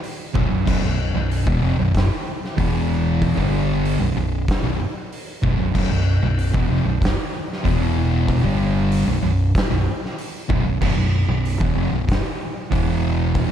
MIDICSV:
0, 0, Header, 1, 4, 480
1, 0, Start_track
1, 0, Key_signature, 2, "minor"
1, 0, Tempo, 634249
1, 505, Time_signature, 4, 2, 24, 8
1, 10230, End_track
2, 0, Start_track
2, 0, Title_t, "Distorted electric guitar"
2, 0, Program_c, 0, 30
2, 263, Note_on_c, 0, 35, 87
2, 268, Note_on_c, 0, 42, 109
2, 371, Note_off_c, 0, 35, 0
2, 372, Note_off_c, 0, 42, 0
2, 380, Note_on_c, 0, 35, 70
2, 381, Note_on_c, 0, 42, 77
2, 489, Note_off_c, 0, 35, 0
2, 494, Note_off_c, 0, 42, 0
2, 498, Note_on_c, 0, 35, 94
2, 503, Note_on_c, 0, 42, 123
2, 611, Note_off_c, 0, 35, 0
2, 614, Note_off_c, 0, 42, 0
2, 620, Note_on_c, 0, 35, 71
2, 623, Note_on_c, 0, 42, 81
2, 816, Note_off_c, 0, 35, 0
2, 817, Note_off_c, 0, 42, 0
2, 866, Note_on_c, 0, 35, 65
2, 868, Note_on_c, 0, 42, 74
2, 1059, Note_off_c, 0, 35, 0
2, 1060, Note_off_c, 0, 42, 0
2, 1109, Note_on_c, 0, 40, 100
2, 1115, Note_on_c, 0, 47, 98
2, 1221, Note_off_c, 0, 40, 0
2, 1224, Note_off_c, 0, 47, 0
2, 1225, Note_on_c, 0, 41, 104
2, 1231, Note_on_c, 0, 48, 106
2, 1340, Note_off_c, 0, 41, 0
2, 1343, Note_off_c, 0, 48, 0
2, 1354, Note_on_c, 0, 35, 73
2, 1357, Note_on_c, 0, 42, 89
2, 1544, Note_off_c, 0, 35, 0
2, 1545, Note_off_c, 0, 42, 0
2, 1949, Note_on_c, 0, 40, 93
2, 1954, Note_on_c, 0, 47, 91
2, 1961, Note_on_c, 0, 52, 98
2, 2543, Note_off_c, 0, 40, 0
2, 2546, Note_off_c, 0, 47, 0
2, 2549, Note_off_c, 0, 52, 0
2, 2553, Note_on_c, 0, 43, 100
2, 2554, Note_on_c, 0, 50, 107
2, 2559, Note_on_c, 0, 55, 99
2, 3025, Note_off_c, 0, 43, 0
2, 3025, Note_off_c, 0, 50, 0
2, 3028, Note_off_c, 0, 55, 0
2, 3032, Note_on_c, 0, 35, 66
2, 3034, Note_on_c, 0, 42, 74
2, 3145, Note_off_c, 0, 35, 0
2, 3148, Note_off_c, 0, 42, 0
2, 3155, Note_on_c, 0, 35, 64
2, 3157, Note_on_c, 0, 42, 79
2, 3345, Note_off_c, 0, 35, 0
2, 3346, Note_off_c, 0, 42, 0
2, 3510, Note_on_c, 0, 35, 69
2, 3514, Note_on_c, 0, 42, 74
2, 3631, Note_off_c, 0, 35, 0
2, 3632, Note_off_c, 0, 42, 0
2, 4106, Note_on_c, 0, 35, 90
2, 4113, Note_on_c, 0, 42, 102
2, 4221, Note_off_c, 0, 35, 0
2, 4225, Note_off_c, 0, 42, 0
2, 4232, Note_on_c, 0, 35, 70
2, 4233, Note_on_c, 0, 42, 75
2, 4336, Note_off_c, 0, 35, 0
2, 4341, Note_off_c, 0, 42, 0
2, 4345, Note_on_c, 0, 35, 107
2, 4351, Note_on_c, 0, 42, 107
2, 4461, Note_off_c, 0, 35, 0
2, 4463, Note_off_c, 0, 42, 0
2, 4472, Note_on_c, 0, 35, 71
2, 4473, Note_on_c, 0, 42, 71
2, 4663, Note_off_c, 0, 35, 0
2, 4664, Note_off_c, 0, 42, 0
2, 4711, Note_on_c, 0, 35, 63
2, 4712, Note_on_c, 0, 42, 80
2, 4902, Note_off_c, 0, 35, 0
2, 4903, Note_off_c, 0, 42, 0
2, 4944, Note_on_c, 0, 40, 92
2, 4947, Note_on_c, 0, 47, 101
2, 5058, Note_off_c, 0, 40, 0
2, 5061, Note_off_c, 0, 47, 0
2, 5061, Note_on_c, 0, 41, 99
2, 5065, Note_on_c, 0, 48, 102
2, 5178, Note_off_c, 0, 41, 0
2, 5180, Note_off_c, 0, 48, 0
2, 5186, Note_on_c, 0, 35, 71
2, 5187, Note_on_c, 0, 42, 75
2, 5379, Note_off_c, 0, 35, 0
2, 5380, Note_off_c, 0, 42, 0
2, 5779, Note_on_c, 0, 40, 89
2, 5782, Note_on_c, 0, 47, 88
2, 5788, Note_on_c, 0, 52, 100
2, 6373, Note_off_c, 0, 40, 0
2, 6376, Note_off_c, 0, 47, 0
2, 6376, Note_on_c, 0, 43, 93
2, 6379, Note_on_c, 0, 50, 102
2, 6380, Note_off_c, 0, 52, 0
2, 6384, Note_on_c, 0, 55, 114
2, 6852, Note_off_c, 0, 43, 0
2, 6854, Note_off_c, 0, 50, 0
2, 6855, Note_on_c, 0, 35, 69
2, 6857, Note_off_c, 0, 55, 0
2, 6858, Note_on_c, 0, 42, 79
2, 6971, Note_off_c, 0, 35, 0
2, 6971, Note_off_c, 0, 42, 0
2, 6980, Note_on_c, 0, 35, 70
2, 6980, Note_on_c, 0, 42, 75
2, 7174, Note_off_c, 0, 42, 0
2, 7175, Note_off_c, 0, 35, 0
2, 7342, Note_on_c, 0, 35, 71
2, 7342, Note_on_c, 0, 42, 78
2, 7463, Note_off_c, 0, 35, 0
2, 7463, Note_off_c, 0, 42, 0
2, 7936, Note_on_c, 0, 35, 97
2, 7941, Note_on_c, 0, 42, 112
2, 8053, Note_off_c, 0, 35, 0
2, 8053, Note_off_c, 0, 42, 0
2, 8062, Note_on_c, 0, 35, 75
2, 8062, Note_on_c, 0, 42, 70
2, 8169, Note_off_c, 0, 35, 0
2, 8175, Note_off_c, 0, 42, 0
2, 8178, Note_on_c, 0, 35, 108
2, 8184, Note_on_c, 0, 42, 107
2, 8289, Note_off_c, 0, 35, 0
2, 8291, Note_off_c, 0, 42, 0
2, 8298, Note_on_c, 0, 35, 70
2, 8300, Note_on_c, 0, 42, 70
2, 8492, Note_off_c, 0, 35, 0
2, 8493, Note_off_c, 0, 42, 0
2, 8539, Note_on_c, 0, 35, 67
2, 8542, Note_on_c, 0, 42, 71
2, 8733, Note_off_c, 0, 35, 0
2, 8734, Note_off_c, 0, 42, 0
2, 8779, Note_on_c, 0, 40, 102
2, 8783, Note_on_c, 0, 47, 106
2, 8894, Note_off_c, 0, 40, 0
2, 8896, Note_off_c, 0, 47, 0
2, 8900, Note_on_c, 0, 41, 95
2, 8908, Note_on_c, 0, 48, 114
2, 9014, Note_off_c, 0, 41, 0
2, 9018, Note_off_c, 0, 48, 0
2, 9023, Note_on_c, 0, 35, 79
2, 9026, Note_on_c, 0, 42, 72
2, 9215, Note_off_c, 0, 35, 0
2, 9216, Note_off_c, 0, 42, 0
2, 9625, Note_on_c, 0, 40, 100
2, 9626, Note_on_c, 0, 47, 102
2, 9631, Note_on_c, 0, 52, 100
2, 10216, Note_off_c, 0, 40, 0
2, 10217, Note_off_c, 0, 47, 0
2, 10219, Note_off_c, 0, 52, 0
2, 10230, End_track
3, 0, Start_track
3, 0, Title_t, "Fingered electric bass"
3, 0, Program_c, 1, 33
3, 270, Note_on_c, 1, 23, 97
3, 377, Note_off_c, 1, 23, 0
3, 382, Note_on_c, 1, 23, 81
3, 495, Note_off_c, 1, 23, 0
3, 506, Note_on_c, 1, 23, 100
3, 618, Note_off_c, 1, 23, 0
3, 622, Note_on_c, 1, 23, 92
3, 848, Note_off_c, 1, 23, 0
3, 863, Note_on_c, 1, 23, 88
3, 1089, Note_off_c, 1, 23, 0
3, 1108, Note_on_c, 1, 28, 111
3, 1220, Note_off_c, 1, 28, 0
3, 1225, Note_on_c, 1, 29, 100
3, 1338, Note_off_c, 1, 29, 0
3, 1349, Note_on_c, 1, 23, 95
3, 1573, Note_off_c, 1, 23, 0
3, 1953, Note_on_c, 1, 28, 100
3, 2522, Note_off_c, 1, 28, 0
3, 2551, Note_on_c, 1, 31, 101
3, 3001, Note_off_c, 1, 31, 0
3, 3030, Note_on_c, 1, 23, 91
3, 3140, Note_off_c, 1, 23, 0
3, 3144, Note_on_c, 1, 23, 86
3, 3371, Note_off_c, 1, 23, 0
3, 3502, Note_on_c, 1, 23, 75
3, 3618, Note_off_c, 1, 23, 0
3, 4113, Note_on_c, 1, 23, 96
3, 4220, Note_off_c, 1, 23, 0
3, 4224, Note_on_c, 1, 23, 77
3, 4339, Note_off_c, 1, 23, 0
3, 4349, Note_on_c, 1, 23, 99
3, 4461, Note_off_c, 1, 23, 0
3, 4475, Note_on_c, 1, 23, 90
3, 4696, Note_off_c, 1, 23, 0
3, 4710, Note_on_c, 1, 23, 85
3, 4933, Note_off_c, 1, 23, 0
3, 4953, Note_on_c, 1, 28, 107
3, 5063, Note_off_c, 1, 28, 0
3, 5072, Note_on_c, 1, 29, 96
3, 5178, Note_off_c, 1, 29, 0
3, 5182, Note_on_c, 1, 23, 83
3, 5408, Note_off_c, 1, 23, 0
3, 5791, Note_on_c, 1, 28, 103
3, 6358, Note_off_c, 1, 28, 0
3, 6389, Note_on_c, 1, 31, 107
3, 6836, Note_off_c, 1, 31, 0
3, 6865, Note_on_c, 1, 23, 94
3, 6974, Note_off_c, 1, 23, 0
3, 6979, Note_on_c, 1, 23, 90
3, 7205, Note_off_c, 1, 23, 0
3, 7344, Note_on_c, 1, 23, 82
3, 7456, Note_off_c, 1, 23, 0
3, 7943, Note_on_c, 1, 23, 102
3, 8055, Note_off_c, 1, 23, 0
3, 8065, Note_on_c, 1, 23, 81
3, 8176, Note_off_c, 1, 23, 0
3, 8184, Note_on_c, 1, 23, 103
3, 8295, Note_off_c, 1, 23, 0
3, 8300, Note_on_c, 1, 23, 94
3, 8524, Note_off_c, 1, 23, 0
3, 8538, Note_on_c, 1, 23, 91
3, 8763, Note_off_c, 1, 23, 0
3, 8787, Note_on_c, 1, 28, 108
3, 8890, Note_off_c, 1, 28, 0
3, 8894, Note_on_c, 1, 29, 97
3, 9010, Note_off_c, 1, 29, 0
3, 9019, Note_on_c, 1, 23, 83
3, 9244, Note_off_c, 1, 23, 0
3, 9625, Note_on_c, 1, 28, 90
3, 10193, Note_off_c, 1, 28, 0
3, 10230, End_track
4, 0, Start_track
4, 0, Title_t, "Drums"
4, 27, Note_on_c, 9, 46, 61
4, 103, Note_off_c, 9, 46, 0
4, 268, Note_on_c, 9, 36, 126
4, 344, Note_off_c, 9, 36, 0
4, 510, Note_on_c, 9, 36, 117
4, 510, Note_on_c, 9, 49, 118
4, 585, Note_off_c, 9, 36, 0
4, 585, Note_off_c, 9, 49, 0
4, 994, Note_on_c, 9, 46, 60
4, 1070, Note_off_c, 9, 46, 0
4, 1111, Note_on_c, 9, 36, 116
4, 1187, Note_off_c, 9, 36, 0
4, 1471, Note_on_c, 9, 46, 67
4, 1473, Note_on_c, 9, 36, 107
4, 1492, Note_on_c, 9, 38, 106
4, 1547, Note_off_c, 9, 46, 0
4, 1549, Note_off_c, 9, 36, 0
4, 1568, Note_off_c, 9, 38, 0
4, 1853, Note_on_c, 9, 38, 34
4, 1928, Note_off_c, 9, 38, 0
4, 1954, Note_on_c, 9, 36, 111
4, 1954, Note_on_c, 9, 46, 66
4, 2029, Note_off_c, 9, 36, 0
4, 2029, Note_off_c, 9, 46, 0
4, 2436, Note_on_c, 9, 36, 108
4, 2437, Note_on_c, 9, 46, 70
4, 2511, Note_off_c, 9, 36, 0
4, 2512, Note_off_c, 9, 46, 0
4, 2555, Note_on_c, 9, 36, 84
4, 2630, Note_off_c, 9, 36, 0
4, 2915, Note_on_c, 9, 46, 63
4, 2991, Note_off_c, 9, 46, 0
4, 3392, Note_on_c, 9, 46, 60
4, 3393, Note_on_c, 9, 36, 112
4, 3413, Note_on_c, 9, 38, 108
4, 3468, Note_off_c, 9, 46, 0
4, 3469, Note_off_c, 9, 36, 0
4, 3489, Note_off_c, 9, 38, 0
4, 3877, Note_on_c, 9, 46, 63
4, 3953, Note_off_c, 9, 46, 0
4, 4113, Note_on_c, 9, 36, 123
4, 4189, Note_off_c, 9, 36, 0
4, 4351, Note_on_c, 9, 36, 112
4, 4351, Note_on_c, 9, 49, 118
4, 4426, Note_off_c, 9, 49, 0
4, 4427, Note_off_c, 9, 36, 0
4, 4832, Note_on_c, 9, 46, 62
4, 4908, Note_off_c, 9, 46, 0
4, 4953, Note_on_c, 9, 36, 118
4, 5028, Note_off_c, 9, 36, 0
4, 5312, Note_on_c, 9, 36, 109
4, 5315, Note_on_c, 9, 46, 64
4, 5337, Note_on_c, 9, 38, 114
4, 5387, Note_off_c, 9, 36, 0
4, 5391, Note_off_c, 9, 46, 0
4, 5412, Note_off_c, 9, 38, 0
4, 5698, Note_on_c, 9, 38, 35
4, 5774, Note_off_c, 9, 38, 0
4, 5791, Note_on_c, 9, 36, 112
4, 5797, Note_on_c, 9, 46, 66
4, 5867, Note_off_c, 9, 36, 0
4, 5873, Note_off_c, 9, 46, 0
4, 6270, Note_on_c, 9, 36, 123
4, 6273, Note_on_c, 9, 46, 72
4, 6346, Note_off_c, 9, 36, 0
4, 6349, Note_off_c, 9, 46, 0
4, 6389, Note_on_c, 9, 36, 80
4, 6465, Note_off_c, 9, 36, 0
4, 6747, Note_on_c, 9, 46, 69
4, 6823, Note_off_c, 9, 46, 0
4, 7227, Note_on_c, 9, 46, 67
4, 7228, Note_on_c, 9, 36, 101
4, 7249, Note_on_c, 9, 38, 120
4, 7303, Note_off_c, 9, 36, 0
4, 7303, Note_off_c, 9, 46, 0
4, 7324, Note_off_c, 9, 38, 0
4, 7609, Note_on_c, 9, 38, 36
4, 7685, Note_off_c, 9, 38, 0
4, 7707, Note_on_c, 9, 46, 60
4, 7782, Note_off_c, 9, 46, 0
4, 7946, Note_on_c, 9, 36, 120
4, 8022, Note_off_c, 9, 36, 0
4, 8185, Note_on_c, 9, 57, 113
4, 8186, Note_on_c, 9, 36, 106
4, 8261, Note_off_c, 9, 57, 0
4, 8262, Note_off_c, 9, 36, 0
4, 8668, Note_on_c, 9, 46, 62
4, 8743, Note_off_c, 9, 46, 0
4, 8787, Note_on_c, 9, 36, 114
4, 8863, Note_off_c, 9, 36, 0
4, 9147, Note_on_c, 9, 36, 110
4, 9149, Note_on_c, 9, 46, 59
4, 9170, Note_on_c, 9, 38, 108
4, 9223, Note_off_c, 9, 36, 0
4, 9224, Note_off_c, 9, 46, 0
4, 9246, Note_off_c, 9, 38, 0
4, 9626, Note_on_c, 9, 36, 108
4, 9627, Note_on_c, 9, 46, 62
4, 9702, Note_off_c, 9, 36, 0
4, 9703, Note_off_c, 9, 46, 0
4, 10100, Note_on_c, 9, 46, 71
4, 10104, Note_on_c, 9, 36, 122
4, 10176, Note_off_c, 9, 46, 0
4, 10180, Note_off_c, 9, 36, 0
4, 10230, End_track
0, 0, End_of_file